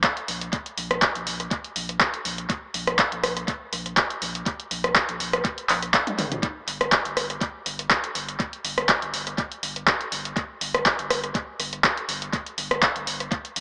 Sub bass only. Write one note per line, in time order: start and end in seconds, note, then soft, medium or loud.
0.28 0.49 A#1 loud
0.78 0.98 A#1 loud
1.15 1.25 A#1 loud
1.27 1.47 A#1 medium
1.76 1.97 A#1 medium
2.25 2.46 A#1 loud
2.74 2.95 A#1 loud
3.12 3.21 A#1 loud
3.23 3.44 A#1 medium
3.73 3.93 A#1 medium
4.22 4.42 A#1 loud
4.71 4.92 A#1 loud
5.09 5.18 A#1 loud
5.20 5.41 A#1 medium
5.69 5.90 A#1 medium
6.18 6.39 G#1 medium
6.68 6.88 G1 loud
7.05 7.15 G1 loud
7.17 7.37 G1 medium
7.66 7.87 G1 medium
8.15 8.36 G1 loud
8.65 8.85 G1 loud
9.02 9.12 G1 loud
9.14 9.34 G1 medium
9.63 9.83 G1 medium
10.12 10.33 G1 loud
10.61 10.82 G1 loud
10.99 11.08 G1 loud
11.10 11.31 G1 medium
11.60 11.80 G1 medium
12.09 12.29 G1 loud
12.58 12.78 G1 loud
12.96 13.05 G1 medium
13.07 13.28 G1 medium
13.56 13.60 G1 medium